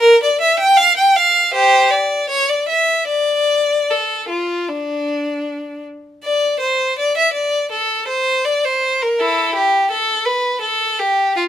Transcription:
violin
0.00 A#4
0.23 D5
0.41 E5
0.59 G5
0.77 F5
0.96 G5
1.16 F5
1.52 G4 C5
1.91 D5
2.29 C#5
2.49 D5
2.68 E5
3.08 D5
3.90 A4
4.29 F4
4.68 D4
6.24 D5
6.59 C5
6.98 D5
7.17 E5
7.33 D5
7.71 A4
8.07 C5
8.45 D5
8.65 C5
9.02 A#4
9.20 E4 A4
9.55 G4
9.91 A4
10.25 B4
10.61 A4
10.99 G4
11.36 F4

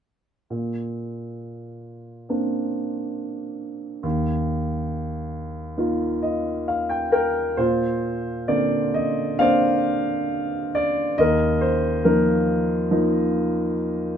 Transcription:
grand piano
0.50 A#2
2.29 A#3 C4 D4
4.03 D#2
5.77 A#3 D#4 F4
6.22 D#5
6.68 F5
6.89 G5
7.12 A#4 G5
7.57 A#2 F4 C5
8.48 D3 A#3 C4 D5
8.94 D#5
9.39 A#3 C4 D4 C5 D5 F5
10.75 D5
11.18 D#2 A#4 D#5
11.61 C5
12.04 F3 A#3 D#4 F4 A#4
12.91 F3 A#3 D#4

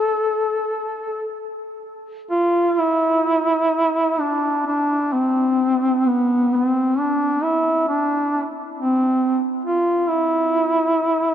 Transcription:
duduk
Already playing: A4
2.31 F4
2.80 E4
4.20 D4
4.66 D4
5.13 C4
6.07 B3
6.55 C4
6.99 D4
7.43 E4
7.88 D4
8.78 C4
9.65 F4
10.08 E4

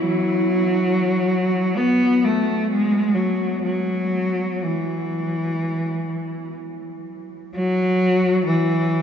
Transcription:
cello
0.05 F#3
1.77 B3
2.24 A3
2.71 G#3
3.14 F#3
3.63 F#3
4.63 E3
7.55 F#3
8.46 E3

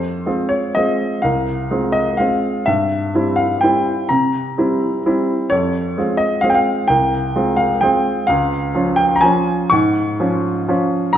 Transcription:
grand piano
Already playing: F2 C5
0.26 G#3 C4 F4
0.49 C#5
0.75 G#3 C4 F4 D#5
1.22 C2 F5
1.71 G#3 C4 F4
1.92 D#5
2.17 G#3 C4 F4 F5
2.66 G2 E5
3.14 G3 C4 E4
3.36 F5
3.61 G3 C4 E4 G5
4.09 C3 A#5
4.58 G3 C4 E4
5.06 G3 C4 E4
5.50 F2 C#5
5.98 G#3 C4 F4
6.17 D#5
6.41 G#3 C4 F4 F5
6.50 G5
6.55 F5
6.88 C2 G5
7.36 G#3 C4 F4
7.57 F5
7.81 G#3 C4 F4 G5
8.27 C#2 F5
8.75 F3 C#4 F4
8.96 G5
9.16 A#5
9.21 F3 C#4 F4 G#5
9.70 G#2 C#6
10.20 F3 C#4 F4
10.68 F3 C#4 F4
11.13 A#5

